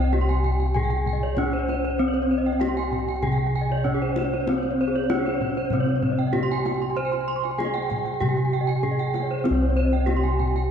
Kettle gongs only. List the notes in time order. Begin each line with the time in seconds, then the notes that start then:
Already playing: C2 C4
0.13 C#4
1.37 C#4
2.00 C4
2.62 C#4
3.24 C3
3.86 C#4
4.47 C4
5.10 C#4
5.72 C3
6.34 C#4
6.97 C5
7.59 C#4
8.21 C3
8.83 C#4
9.45 C4
9.50 C2
10.09 C#4